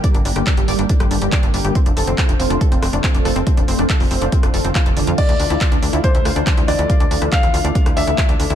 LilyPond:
<<
  \new Staff \with { instrumentName = "Grand piano" } { \time 4/4 \key d \minor \tempo 4 = 140 r1 | r1 | r1 | d''2 c''4. d''8~ |
d''4 f''4. e''4. | }
  \new Staff \with { instrumentName = "Synth pluck" } { \time 4/4 \key d \minor d''16 d'16 d'16 g'16 d'16 g'16 d''16 d'16 d'16 g'16 d'16 g'16 d''16 d'16 d'16 g'16 | c'16 d'16 a'16 c'16 c'16 d'16 c'16 d'16 a'16 c'16 c'16 d'16 c'16 d'16 a'16 c'16 | c'16 d'16 c'16 d'16 a'16 c'16 c'16 d'16 c'16 d'16 a'16 c'16 f'16 a'16 d'16 f'16 | d'16 e'16 d'16 e'16 f'16 d'16 d'16 e'16 d'16 e'16 f'16 d'16 d'16 e'16 d'16 e'16 |
f'16 d'16 d'16 e'16 d'16 e'16 f'16 d'16 d'16 e'16 d'16 e'16 f'16 d'16 d'16 e'16 | }
  \new Staff \with { instrumentName = "Analog synth pad" } { \time 4/4 \key d \minor <d g bes g'>8 <d g bes g'>8 <d g bes g'>8 <d g bes g'>8 <d g bes g'>16 <d g bes g'>8 <d g bes g'>8 <d g bes g'>8 <d g bes g'>16 | <d a c' f'>8 <d a c' f'>8 <d a c' f'>8 <d a c' f'>8 <d a c' f'>16 <d a c' f'>8 <d a c' f'>8 <d a c' f'>8 <d a c' f'>16 | <d a c' f'>8 <d a c' f'>8 <d a c' f'>8 <d a c' f'>8 <d a c' f'>16 <d a c' f'>8 <d a c' f'>8 <d a c' f'>8 <d a c' f'>16 | <e a d' f'>8 <e a d' f'>8 <e a d' f'>8 <e a d' f'>8 <e a d' f'>16 <e a d' f'>8 <e a d' f'>8 <e a d' f'>8 <e a d' f'>16 |
<e a d' f'>8 <e a d' f'>8 <e a d' f'>8 <e a d' f'>8 <e a d' f'>16 <e a d' f'>8 <e a d' f'>8 <e a d' f'>8 <e a d' f'>16 | }
  \new Staff \with { instrumentName = "Analog synth bass" } { \clef bass \time 4/4 \key d \minor r16 g,,16 g,,16 g,,16 r16 g,,16 g,,16 g,,16 r16 g,,16 g,,16 g,,16 r16 g,,16 g,,16 g,,16 | r16 f,,16 f,,16 f,,16 r16 f,,16 f,,16 f,,16 r16 f,,16 f,,16 f,,16 r16 f,,16 f,,16 f,,16 | r16 f,,16 f,,16 f,,16 r16 f,,16 f,,16 f,,16 r16 f,,16 f,,16 f,,16 r16 f,,16 f,,16 f,16 | r16 d,16 d,16 d,16 r16 d,16 d,16 d,16 r16 d,16 d,16 d,16 r16 d,16 d,16 d,16 |
r16 d,16 d,16 d,16 r16 d,16 d,16 d,16 r16 d,16 d,16 d,16 r16 d,16 d,16 d,16 | }
  \new DrumStaff \with { instrumentName = "Drums" } \drummode { \time 4/4 <hh bd>16 hh16 hho16 <hh ss>16 <hc hh bd>16 hh16 hho16 hh16 <hh bd>16 <hh ss>16 hho16 hh16 <hc hh bd>16 hh16 hho16 hh16 | <hh bd>16 hh16 hho16 hh16 <hc hh bd>16 hh16 hho16 hh16 <hh bd>16 hh16 <hho ss>16 hh16 <hc hh bd>16 hh16 <hho ss>16 hh16 | <hh bd>16 hh16 hho16 <hh ss>16 <hc hh bd>16 hho16 hho16 hh16 <hh bd>16 <hh ss>16 hho16 hh16 <hc hh bd>16 hh16 hho16 hh16 | <cymc hh bd>16 hh16 hho16 hh16 <hc hh bd>16 hh16 hho16 hh16 <hh bd>16 hh16 <hho ss>16 hh16 <hc hh bd>16 hh16 <hho ss>16 hh16 |
<hh bd>16 hh16 hho16 <hh ss>16 <hc hh bd>16 hh16 hho16 hh16 <hh bd>16 <hh ss>16 hho16 hh16 <hc hh bd>16 hh16 hho16 hh16 | }
>>